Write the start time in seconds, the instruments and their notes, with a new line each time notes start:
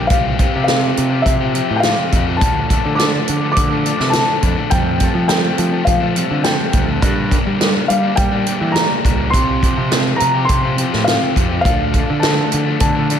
Already playing: picked electric bass A#1, upright piano G5
0.07 picked electric bass C2, clean electric guitar C3 F3 C4, upright piano F5, kick, closed hi-hat
0.12 clean electric guitar F4 G4
0.38 clean electric guitar F3 C4 F4 G4, kick, closed hi-hat
0.54 picked electric bass C3, clean electric guitar C4 F4 G4
0.64 clean electric guitar C3, upright piano F5
0.68 clean electric guitar F3 C4 F4 G4, snare, closed hi-hat
0.82 clean electric guitar C4 F4 G4
0.97 picked electric bass C3, closed hi-hat
1.11 clean electric guitar C4 F4 G4
1.22 picked electric bass C3, upright piano E5
1.26 kick, closed hi-hat
1.41 clean electric guitar C4 F4 G4
1.55 clean electric guitar F3 C4 F4 G4, closed hi-hat
1.69 picked electric bass A2, clean electric guitar C4 F4 G4
1.76 upright piano G5
1.80 clean electric guitar C3, upright piano F5, snare, closed hi-hat
1.84 clean electric guitar F3 C4 F4 G4
2.12 picked electric bass F2, clean electric guitar F3 C4 F4 G4, kick, closed hi-hat
2.27 clean electric guitar C4 F4 G4
2.37 upright piano A5
2.41 picked electric bass D2, clean electric guitar D3 A3 D4 F4 A4, overdriven electric guitar F3, kick, closed hi-hat
2.69 overdriven electric guitar D3 F3, clean electric guitar A3 D4 F4 A4, kick, closed hi-hat
2.85 picked electric bass D3, overdriven electric guitar F3 A3, clean electric guitar D4 F4 A4
2.95 clean electric guitar D3 A3, overdriven electric guitar F3, upright piano D6
2.99 clean electric guitar D4 F4 A4, snare, closed hi-hat
3.12 clean electric guitar D4 F4 A4
3.28 picked electric bass D3, closed hi-hat
3.41 overdriven electric guitar F3 A3, clean electric guitar D4 F4 A4
3.52 upright piano D6
3.57 picked electric bass D3, kick, closed hi-hat
3.70 overdriven electric guitar F3 A3, clean electric guitar D4 F4 A4
3.83 overdriven electric guitar D3 F3, clean electric guitar A3 D4 F4 A4, closed hi-hat
3.99 picked electric bass C3, overdriven electric guitar F3 A3, clean electric guitar D4 F4 A4, snare
4.10 clean electric guitar D3 A3 D4, overdriven electric guitar F3, upright piano A5, snare, closed hi-hat
4.15 clean electric guitar F4 A4
4.42 picked electric bass F2, overdriven electric guitar D3 F3, clean electric guitar A3 D4 F4 A4, kick, closed hi-hat
4.56 overdriven electric guitar F3 A3, clean electric guitar D4 F4 A4
4.70 overdriven electric guitar F2 C3 A3, picked electric bass F2, clean electric guitar F3 G3 C4 F4 A4, upright piano G5, kick, closed hi-hat
5.00 overdriven electric guitar C3 F3 A3, clean electric guitar G3 C4 F4 A4, kick, closed hi-hat
5.14 picked electric bass F3, overdriven electric guitar F3 A3, clean electric guitar C4 F4 A4
5.28 overdriven electric guitar F2 C3 A3, clean electric guitar F3 G3 C4 F4 A4, upright piano G5, snare, closed hi-hat
5.43 clean electric guitar C4 F4 A4
5.58 picked electric bass F3, closed hi-hat
5.72 overdriven electric guitar F3 A3, clean electric guitar C4 F4 A4
5.85 picked electric bass F3, upright piano F5, kick, closed hi-hat
6.00 overdriven electric guitar F3 A3, clean electric guitar C4 F4 A4
6.15 overdriven electric guitar C3 F3 A3, clean electric guitar G3 C4 F4 A4, closed hi-hat
6.29 picked electric bass D3, overdriven electric guitar F3 A3, clean electric guitar C4 F4 A4
6.43 overdriven electric guitar F2 C3 A3, clean electric guitar F3 G3 C4 F4 A4, upright piano G5, snare, closed hi-hat
6.72 picked electric bass D2, overdriven electric guitar C3 F3 A3, clean electric guitar G3 C4 F4 A4, kick, closed hi-hat
6.87 overdriven electric guitar F3 A3, clean electric guitar C4 F4 A4
7.02 clean electric guitar G2 D3 G3 A#3 D4 G4, picked electric bass G2, kick, closed hi-hat
7.30 overdriven electric guitar D3, clean electric guitar G3 A#3 D4 G4, kick, closed hi-hat
7.44 picked electric bass G3, clean electric guitar G3 A#3 D4 G4
7.59 clean electric guitar G2 D3 G3 A#3 D4 G4, snare, closed hi-hat
7.73 clean electric guitar G3 A#3 D4 G4
7.88 picked electric bass G3, upright piano F5, closed hi-hat
8.03 clean electric guitar G3 A#3 D4 G4
8.16 picked electric bass G3, upright piano G5, kick, closed hi-hat
8.31 clean electric guitar G3 A#3 D4 G4
8.46 overdriven electric guitar D3, clean electric guitar G3 A#3 D4 G4, closed hi-hat
8.61 picked electric bass E3, clean electric guitar G3 A#3 D4 G4
8.72 clean electric guitar G2, upright piano A#5, snare, closed hi-hat
8.76 clean electric guitar D3 G3 A#3 D4 G4
9.03 picked electric bass C#2, overdriven electric guitar D3, clean electric guitar G3 A#3 D4 G4, kick, closed hi-hat
9.19 clean electric guitar G3 A#3 D4 G4
9.30 picked electric bass C2, clean electric guitar C3 F3 C4 F4, upright piano C6, kick, closed hi-hat
9.35 clean electric guitar G4
9.62 clean electric guitar F3 C4 F4 G4, kick, closed hi-hat
9.76 picked electric bass C3, clean electric guitar C4 F4 G4
9.91 clean electric guitar C3 F3 C4 F4 G4, snare, closed hi-hat
10.07 clean electric guitar C4 F4 G4
10.16 upright piano A#5, closed hi-hat
10.21 picked electric bass C3
10.34 clean electric guitar C4 F4 G4
10.45 upright piano C6
10.49 picked electric bass C3, kick, closed hi-hat
10.64 clean electric guitar C4 F4 G4
10.78 clean electric guitar F3 C4 F4 G4, closed hi-hat
10.93 picked electric bass A2, clean electric guitar C4 F4 G4, snare
11.04 clean electric guitar C3 F3 C4, upright piano F5, snare, closed hi-hat
11.08 clean electric guitar F4 G4
11.34 picked electric bass F2, clean electric guitar F3 C4 F4 G4, kick, closed hi-hat
11.51 clean electric guitar C4 F4 G4
11.61 clean electric guitar D3, overdriven electric guitar F3, upright piano F5
11.65 picked electric bass D2, clean electric guitar A3 D4 F4 A4, kick, closed hi-hat
11.93 overdriven electric guitar D3 F3, clean electric guitar A3 D4 F4 A4, kick, closed hi-hat
12.09 picked electric bass D3, overdriven electric guitar F3 A3, clean electric guitar D4 F4 A4
12.20 clean electric guitar D3 A3, overdriven electric guitar F3, upright piano A5, snare, closed hi-hat
12.24 clean electric guitar D4 F4 A4
12.38 clean electric guitar D4 F4 A4
12.52 picked electric bass D3, closed hi-hat
12.65 overdriven electric guitar F3 A3 D4, clean electric guitar A4
12.69 clean electric guitar D4 F4
12.80 picked electric bass D3, upright piano A5, kick, closed hi-hat
12.96 overdriven electric guitar F3 A3, clean electric guitar D4 F4 A4
13.09 overdriven electric guitar D3 F3, clean electric guitar A3 D4 F4 A4, closed hi-hat